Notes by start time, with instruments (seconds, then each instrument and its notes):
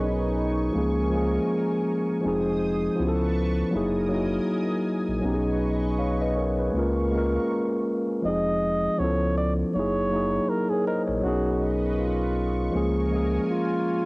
Already playing: sub bass B1, tine electric piano F#3 B3 C#4 D#4 G#4 A#4 C#5, analog synth pad B4 D#5 G#5 C#6
0.02 flugelhorn D#4
0.71 sub bass C#2, tine electric piano F3 G#3 A#3, analog synth pad A#4
0.76 tine electric piano C#4 G#4
1.10 tine electric piano F3 G#3 A#3
1.15 tine electric piano C#4 G#4
2.21 sub bass F1, tine electric piano F3 G#3 C4, analog synth pad C5 D#6
2.26 tine electric piano D#4 G#4
2.95 tine electric piano F3 B3 C#4, analog synth pad B4 A5 C#6
2.99 sub bass C#2, tine electric piano E4 G4
3.08 tine electric piano A4
3.71 sub bass F#1, tine electric piano F#3 A#3 D#4, analog synth pad A#4 D#5 G#5 D#6
3.75 tine electric piano E4 G#4
4.09 tine electric piano F#3 A#3 D#4
4.13 tine electric piano E4 F#4
5.08 sub bass A#1
5.21 sub bass B1, tine electric piano F#3 B3 C#4, analog synth pad B4 D#5 C#6
5.26 tine electric piano D#4 G4
5.34 tine electric piano G#4
5.99 tine electric piano C#5 F5
6.21 tine electric piano B4 D#5
6.37 tine electric piano A#4 C#5
6.59 tine electric piano G#4 B4
6.72 sub bass C#2, tine electric piano G#3 A#3 C#4, analog synth pad A#4 F5 C#6
6.77 tine electric piano F4 A#4
7.11 tine electric piano G#3 A#3 C#4
7.16 tine electric piano F4 A#4
8.22 sub bass F1, tine electric piano F3 G#3 C4, flugelhorn D#5
8.27 tine electric piano D#4 G#4
8.97 sub bass C#2, tine electric piano F3 B3 C#4, flugelhorn C#5
9.02 tine electric piano E4 A4
9.37 flugelhorn D5
9.73 sub bass F#1, tine electric piano F#3 A#3 D#4, flugelhorn C#5
9.78 tine electric piano E4 G#4
10.10 tine electric piano F#3 A#3 D#4
10.15 tine electric piano E4 G#4
10.49 flugelhorn A#4
10.70 flugelhorn G#4, tine electric piano A#4 C#5
10.87 flugelhorn A#4, tine electric piano C5 D#5
11.07 sub bass A#1, tine electric piano A#4 C#5
11.21 sub bass B1, tine electric piano F#3 B3 C#4, flugelhorn F#4, analog synth pad B4 D#5 C#6
11.26 tine electric piano D#4 G#4
11.99 flugelhorn F4
12.71 sub bass C#2, tine electric piano F3 G#3 A#3, analog synth pad A#4 G#5
12.75 tine electric piano C#4 G#4
13.09 tine electric piano F3 G#3 A#3
13.14 tine electric piano C#4 G#4
13.50 flugelhorn F4